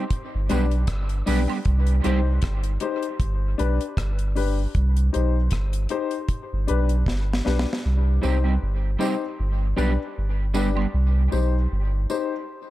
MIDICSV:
0, 0, Header, 1, 5, 480
1, 0, Start_track
1, 0, Key_signature, -3, "minor"
1, 0, Tempo, 773196
1, 1032, Time_signature, 4, 2, 24, 8
1, 7884, End_track
2, 0, Start_track
2, 0, Title_t, "Upright piano"
2, 0, Program_c, 0, 0
2, 306, Note_on_c, 0, 62, 91
2, 309, Note_on_c, 0, 67, 79
2, 312, Note_on_c, 0, 71, 93
2, 443, Note_off_c, 0, 62, 0
2, 444, Note_off_c, 0, 67, 0
2, 446, Note_off_c, 0, 71, 0
2, 783, Note_on_c, 0, 62, 79
2, 790, Note_on_c, 0, 67, 75
2, 791, Note_on_c, 0, 71, 92
2, 921, Note_off_c, 0, 62, 0
2, 924, Note_off_c, 0, 67, 0
2, 925, Note_off_c, 0, 71, 0
2, 1267, Note_on_c, 0, 63, 77
2, 1268, Note_on_c, 0, 67, 74
2, 1273, Note_on_c, 0, 72, 93
2, 1403, Note_off_c, 0, 63, 0
2, 1403, Note_off_c, 0, 67, 0
2, 1406, Note_off_c, 0, 72, 0
2, 1743, Note_on_c, 0, 63, 92
2, 1747, Note_on_c, 0, 67, 89
2, 1753, Note_on_c, 0, 72, 99
2, 1881, Note_off_c, 0, 63, 0
2, 1883, Note_off_c, 0, 67, 0
2, 1886, Note_off_c, 0, 72, 0
2, 2223, Note_on_c, 0, 62, 90
2, 2228, Note_on_c, 0, 67, 76
2, 2231, Note_on_c, 0, 71, 96
2, 2361, Note_off_c, 0, 62, 0
2, 2363, Note_off_c, 0, 67, 0
2, 2365, Note_off_c, 0, 71, 0
2, 2703, Note_on_c, 0, 62, 78
2, 2708, Note_on_c, 0, 67, 80
2, 2713, Note_on_c, 0, 71, 90
2, 2841, Note_off_c, 0, 62, 0
2, 2843, Note_off_c, 0, 67, 0
2, 2846, Note_off_c, 0, 71, 0
2, 3183, Note_on_c, 0, 63, 78
2, 3186, Note_on_c, 0, 67, 72
2, 3190, Note_on_c, 0, 72, 84
2, 3321, Note_off_c, 0, 63, 0
2, 3322, Note_off_c, 0, 67, 0
2, 3324, Note_off_c, 0, 72, 0
2, 3665, Note_on_c, 0, 63, 87
2, 3666, Note_on_c, 0, 67, 80
2, 3670, Note_on_c, 0, 72, 101
2, 3802, Note_off_c, 0, 63, 0
2, 3802, Note_off_c, 0, 67, 0
2, 3804, Note_off_c, 0, 72, 0
2, 4143, Note_on_c, 0, 62, 83
2, 4145, Note_on_c, 0, 67, 76
2, 4150, Note_on_c, 0, 71, 100
2, 4281, Note_off_c, 0, 62, 0
2, 4282, Note_off_c, 0, 67, 0
2, 4285, Note_off_c, 0, 71, 0
2, 4623, Note_on_c, 0, 62, 81
2, 4626, Note_on_c, 0, 67, 75
2, 4630, Note_on_c, 0, 71, 85
2, 4761, Note_off_c, 0, 62, 0
2, 4762, Note_off_c, 0, 67, 0
2, 4764, Note_off_c, 0, 71, 0
2, 5100, Note_on_c, 0, 63, 77
2, 5105, Note_on_c, 0, 67, 72
2, 5108, Note_on_c, 0, 72, 80
2, 5240, Note_off_c, 0, 63, 0
2, 5242, Note_off_c, 0, 67, 0
2, 5244, Note_off_c, 0, 72, 0
2, 5581, Note_on_c, 0, 63, 90
2, 5585, Note_on_c, 0, 67, 78
2, 5589, Note_on_c, 0, 72, 96
2, 5720, Note_off_c, 0, 63, 0
2, 5722, Note_off_c, 0, 67, 0
2, 5724, Note_off_c, 0, 72, 0
2, 6061, Note_on_c, 0, 62, 78
2, 6065, Note_on_c, 0, 67, 77
2, 6069, Note_on_c, 0, 71, 91
2, 6200, Note_off_c, 0, 62, 0
2, 6202, Note_off_c, 0, 67, 0
2, 6204, Note_off_c, 0, 71, 0
2, 6544, Note_on_c, 0, 62, 78
2, 6546, Note_on_c, 0, 67, 70
2, 6552, Note_on_c, 0, 71, 86
2, 6682, Note_off_c, 0, 62, 0
2, 6683, Note_off_c, 0, 67, 0
2, 6686, Note_off_c, 0, 71, 0
2, 7025, Note_on_c, 0, 63, 82
2, 7028, Note_on_c, 0, 67, 77
2, 7031, Note_on_c, 0, 72, 86
2, 7162, Note_off_c, 0, 63, 0
2, 7163, Note_off_c, 0, 67, 0
2, 7165, Note_off_c, 0, 72, 0
2, 7510, Note_on_c, 0, 63, 84
2, 7512, Note_on_c, 0, 67, 74
2, 7515, Note_on_c, 0, 72, 98
2, 7645, Note_off_c, 0, 63, 0
2, 7646, Note_off_c, 0, 67, 0
2, 7647, Note_off_c, 0, 72, 0
2, 7884, End_track
3, 0, Start_track
3, 0, Title_t, "Clean electric guitar"
3, 0, Program_c, 1, 27
3, 306, Note_on_c, 1, 55, 77
3, 311, Note_on_c, 1, 59, 76
3, 314, Note_on_c, 1, 62, 82
3, 315, Note_on_c, 1, 67, 85
3, 395, Note_off_c, 1, 55, 0
3, 397, Note_off_c, 1, 59, 0
3, 399, Note_off_c, 1, 62, 0
3, 399, Note_off_c, 1, 67, 0
3, 784, Note_on_c, 1, 55, 79
3, 788, Note_on_c, 1, 59, 87
3, 791, Note_on_c, 1, 62, 89
3, 791, Note_on_c, 1, 67, 99
3, 874, Note_off_c, 1, 55, 0
3, 876, Note_off_c, 1, 59, 0
3, 877, Note_off_c, 1, 62, 0
3, 877, Note_off_c, 1, 67, 0
3, 918, Note_on_c, 1, 67, 58
3, 920, Note_on_c, 1, 62, 60
3, 922, Note_on_c, 1, 59, 49
3, 927, Note_on_c, 1, 55, 51
3, 974, Note_off_c, 1, 67, 0
3, 976, Note_off_c, 1, 62, 0
3, 977, Note_off_c, 1, 59, 0
3, 979, Note_off_c, 1, 55, 0
3, 1264, Note_on_c, 1, 55, 90
3, 1268, Note_on_c, 1, 60, 84
3, 1269, Note_on_c, 1, 63, 96
3, 1272, Note_on_c, 1, 67, 96
3, 1354, Note_off_c, 1, 55, 0
3, 1355, Note_off_c, 1, 60, 0
3, 1356, Note_off_c, 1, 63, 0
3, 1358, Note_off_c, 1, 67, 0
3, 5101, Note_on_c, 1, 55, 71
3, 5107, Note_on_c, 1, 60, 71
3, 5109, Note_on_c, 1, 63, 81
3, 5113, Note_on_c, 1, 67, 81
3, 5192, Note_off_c, 1, 55, 0
3, 5195, Note_off_c, 1, 60, 0
3, 5196, Note_off_c, 1, 63, 0
3, 5198, Note_off_c, 1, 67, 0
3, 5239, Note_on_c, 1, 67, 60
3, 5244, Note_on_c, 1, 63, 58
3, 5246, Note_on_c, 1, 60, 58
3, 5248, Note_on_c, 1, 55, 53
3, 5295, Note_off_c, 1, 67, 0
3, 5297, Note_off_c, 1, 63, 0
3, 5298, Note_off_c, 1, 60, 0
3, 5299, Note_off_c, 1, 55, 0
3, 5580, Note_on_c, 1, 55, 74
3, 5582, Note_on_c, 1, 60, 78
3, 5586, Note_on_c, 1, 63, 89
3, 5588, Note_on_c, 1, 67, 90
3, 5671, Note_off_c, 1, 55, 0
3, 5673, Note_off_c, 1, 60, 0
3, 5674, Note_off_c, 1, 63, 0
3, 5676, Note_off_c, 1, 67, 0
3, 6062, Note_on_c, 1, 59, 78
3, 6063, Note_on_c, 1, 55, 79
3, 6067, Note_on_c, 1, 62, 92
3, 6068, Note_on_c, 1, 67, 95
3, 6153, Note_off_c, 1, 55, 0
3, 6153, Note_off_c, 1, 59, 0
3, 6155, Note_off_c, 1, 62, 0
3, 6155, Note_off_c, 1, 67, 0
3, 6542, Note_on_c, 1, 55, 87
3, 6544, Note_on_c, 1, 59, 77
3, 6547, Note_on_c, 1, 62, 76
3, 6547, Note_on_c, 1, 67, 84
3, 6633, Note_off_c, 1, 55, 0
3, 6634, Note_off_c, 1, 59, 0
3, 6635, Note_off_c, 1, 62, 0
3, 6635, Note_off_c, 1, 67, 0
3, 6677, Note_on_c, 1, 67, 60
3, 6681, Note_on_c, 1, 62, 52
3, 6683, Note_on_c, 1, 59, 50
3, 6686, Note_on_c, 1, 55, 49
3, 6734, Note_off_c, 1, 67, 0
3, 6736, Note_off_c, 1, 62, 0
3, 6737, Note_off_c, 1, 59, 0
3, 6738, Note_off_c, 1, 55, 0
3, 7884, End_track
4, 0, Start_track
4, 0, Title_t, "Sub bass"
4, 0, Program_c, 2, 38
4, 216, Note_on_c, 2, 31, 99
4, 306, Note_off_c, 2, 31, 0
4, 322, Note_on_c, 2, 35, 92
4, 531, Note_off_c, 2, 35, 0
4, 549, Note_on_c, 2, 31, 94
4, 764, Note_off_c, 2, 31, 0
4, 794, Note_on_c, 2, 35, 86
4, 914, Note_off_c, 2, 35, 0
4, 1033, Note_on_c, 2, 36, 117
4, 1246, Note_off_c, 2, 36, 0
4, 1277, Note_on_c, 2, 36, 90
4, 1488, Note_off_c, 2, 36, 0
4, 1512, Note_on_c, 2, 31, 92
4, 1725, Note_off_c, 2, 31, 0
4, 1991, Note_on_c, 2, 31, 101
4, 2205, Note_off_c, 2, 31, 0
4, 2235, Note_on_c, 2, 35, 94
4, 2354, Note_off_c, 2, 35, 0
4, 2470, Note_on_c, 2, 31, 98
4, 2898, Note_off_c, 2, 31, 0
4, 2953, Note_on_c, 2, 36, 111
4, 3166, Note_off_c, 2, 36, 0
4, 3201, Note_on_c, 2, 35, 86
4, 3410, Note_off_c, 2, 35, 0
4, 3431, Note_on_c, 2, 31, 89
4, 3645, Note_off_c, 2, 31, 0
4, 4054, Note_on_c, 2, 31, 93
4, 4144, Note_off_c, 2, 31, 0
4, 4160, Note_on_c, 2, 35, 92
4, 4370, Note_off_c, 2, 35, 0
4, 4390, Note_on_c, 2, 31, 88
4, 4605, Note_off_c, 2, 31, 0
4, 4638, Note_on_c, 2, 35, 86
4, 4755, Note_off_c, 2, 35, 0
4, 4876, Note_on_c, 2, 36, 118
4, 5088, Note_off_c, 2, 36, 0
4, 5116, Note_on_c, 2, 36, 88
4, 5328, Note_off_c, 2, 36, 0
4, 5356, Note_on_c, 2, 31, 91
4, 5568, Note_off_c, 2, 31, 0
4, 5834, Note_on_c, 2, 31, 104
4, 6047, Note_off_c, 2, 31, 0
4, 6074, Note_on_c, 2, 35, 91
4, 6193, Note_off_c, 2, 35, 0
4, 6320, Note_on_c, 2, 31, 85
4, 6744, Note_off_c, 2, 31, 0
4, 6791, Note_on_c, 2, 36, 107
4, 7005, Note_off_c, 2, 36, 0
4, 7034, Note_on_c, 2, 35, 81
4, 7247, Note_off_c, 2, 35, 0
4, 7278, Note_on_c, 2, 31, 98
4, 7489, Note_off_c, 2, 31, 0
4, 7884, End_track
5, 0, Start_track
5, 0, Title_t, "Drums"
5, 65, Note_on_c, 9, 42, 84
5, 66, Note_on_c, 9, 36, 101
5, 127, Note_off_c, 9, 42, 0
5, 128, Note_off_c, 9, 36, 0
5, 308, Note_on_c, 9, 42, 65
5, 315, Note_on_c, 9, 54, 56
5, 315, Note_on_c, 9, 76, 73
5, 370, Note_off_c, 9, 42, 0
5, 377, Note_off_c, 9, 54, 0
5, 377, Note_off_c, 9, 76, 0
5, 443, Note_on_c, 9, 42, 48
5, 505, Note_off_c, 9, 42, 0
5, 542, Note_on_c, 9, 42, 84
5, 545, Note_on_c, 9, 36, 105
5, 545, Note_on_c, 9, 37, 105
5, 604, Note_off_c, 9, 42, 0
5, 607, Note_off_c, 9, 36, 0
5, 607, Note_off_c, 9, 37, 0
5, 678, Note_on_c, 9, 42, 50
5, 740, Note_off_c, 9, 42, 0
5, 788, Note_on_c, 9, 46, 62
5, 788, Note_on_c, 9, 54, 70
5, 850, Note_off_c, 9, 46, 0
5, 850, Note_off_c, 9, 54, 0
5, 928, Note_on_c, 9, 76, 79
5, 990, Note_off_c, 9, 76, 0
5, 1024, Note_on_c, 9, 42, 67
5, 1028, Note_on_c, 9, 36, 99
5, 1086, Note_off_c, 9, 42, 0
5, 1090, Note_off_c, 9, 36, 0
5, 1158, Note_on_c, 9, 42, 50
5, 1220, Note_off_c, 9, 42, 0
5, 1268, Note_on_c, 9, 42, 67
5, 1330, Note_off_c, 9, 42, 0
5, 1500, Note_on_c, 9, 42, 87
5, 1506, Note_on_c, 9, 36, 109
5, 1514, Note_on_c, 9, 37, 102
5, 1562, Note_off_c, 9, 42, 0
5, 1568, Note_off_c, 9, 36, 0
5, 1576, Note_off_c, 9, 37, 0
5, 1636, Note_on_c, 9, 42, 60
5, 1698, Note_off_c, 9, 42, 0
5, 1739, Note_on_c, 9, 42, 78
5, 1802, Note_off_c, 9, 42, 0
5, 1878, Note_on_c, 9, 42, 45
5, 1940, Note_off_c, 9, 42, 0
5, 1984, Note_on_c, 9, 36, 99
5, 1986, Note_on_c, 9, 42, 81
5, 2046, Note_off_c, 9, 36, 0
5, 2048, Note_off_c, 9, 42, 0
5, 2230, Note_on_c, 9, 42, 65
5, 2292, Note_off_c, 9, 42, 0
5, 2363, Note_on_c, 9, 42, 53
5, 2425, Note_off_c, 9, 42, 0
5, 2466, Note_on_c, 9, 36, 99
5, 2468, Note_on_c, 9, 42, 84
5, 2472, Note_on_c, 9, 37, 110
5, 2528, Note_off_c, 9, 36, 0
5, 2530, Note_off_c, 9, 42, 0
5, 2534, Note_off_c, 9, 37, 0
5, 2599, Note_on_c, 9, 42, 48
5, 2661, Note_off_c, 9, 42, 0
5, 2709, Note_on_c, 9, 46, 60
5, 2771, Note_off_c, 9, 46, 0
5, 2947, Note_on_c, 9, 42, 67
5, 2948, Note_on_c, 9, 36, 105
5, 3009, Note_off_c, 9, 42, 0
5, 3010, Note_off_c, 9, 36, 0
5, 3083, Note_on_c, 9, 42, 55
5, 3145, Note_off_c, 9, 42, 0
5, 3190, Note_on_c, 9, 42, 72
5, 3252, Note_off_c, 9, 42, 0
5, 3418, Note_on_c, 9, 42, 92
5, 3427, Note_on_c, 9, 36, 105
5, 3432, Note_on_c, 9, 37, 98
5, 3481, Note_off_c, 9, 42, 0
5, 3489, Note_off_c, 9, 36, 0
5, 3494, Note_off_c, 9, 37, 0
5, 3557, Note_on_c, 9, 42, 60
5, 3620, Note_off_c, 9, 42, 0
5, 3657, Note_on_c, 9, 42, 76
5, 3719, Note_off_c, 9, 42, 0
5, 3792, Note_on_c, 9, 42, 46
5, 3854, Note_off_c, 9, 42, 0
5, 3902, Note_on_c, 9, 36, 101
5, 3902, Note_on_c, 9, 42, 80
5, 3964, Note_off_c, 9, 36, 0
5, 3964, Note_off_c, 9, 42, 0
5, 4148, Note_on_c, 9, 42, 64
5, 4210, Note_off_c, 9, 42, 0
5, 4279, Note_on_c, 9, 42, 53
5, 4341, Note_off_c, 9, 42, 0
5, 4385, Note_on_c, 9, 36, 100
5, 4395, Note_on_c, 9, 38, 57
5, 4447, Note_off_c, 9, 36, 0
5, 4457, Note_off_c, 9, 38, 0
5, 4553, Note_on_c, 9, 38, 73
5, 4615, Note_off_c, 9, 38, 0
5, 4631, Note_on_c, 9, 38, 69
5, 4693, Note_off_c, 9, 38, 0
5, 4714, Note_on_c, 9, 38, 91
5, 4777, Note_off_c, 9, 38, 0
5, 4798, Note_on_c, 9, 38, 85
5, 4860, Note_off_c, 9, 38, 0
5, 5110, Note_on_c, 9, 54, 49
5, 5172, Note_off_c, 9, 54, 0
5, 5591, Note_on_c, 9, 54, 74
5, 5653, Note_off_c, 9, 54, 0
5, 6073, Note_on_c, 9, 54, 51
5, 6135, Note_off_c, 9, 54, 0
5, 6546, Note_on_c, 9, 54, 73
5, 6608, Note_off_c, 9, 54, 0
5, 6684, Note_on_c, 9, 76, 74
5, 6746, Note_off_c, 9, 76, 0
5, 7028, Note_on_c, 9, 54, 47
5, 7090, Note_off_c, 9, 54, 0
5, 7510, Note_on_c, 9, 54, 74
5, 7572, Note_off_c, 9, 54, 0
5, 7884, End_track
0, 0, End_of_file